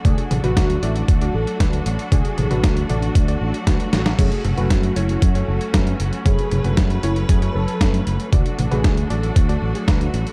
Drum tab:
CC |----------------|----------------|x---------------|----------------|
HH |xxxxxxxxxx-xxxxx|xxxxxxxxxx-xxxxx|xxxxxxxxxx-xxxxx|xxxxxxxxxx-xxxxx|
SD |----o-------o---|----o-------o-oo|----o-------o---|----o-------o---|
T1 |o-oo------------|o-oo--o---------|o-oo------------|o-oo------------|
BD |o---o---o---o---|o---o---o---o---|o---o---o---o---|o---o---o---o---|

CC |----------------|
HH |xxxxxxxxxx-xxxxx|
SD |----o-------o---|
T1 |o-oo------------|
BD |o---o---o---o---|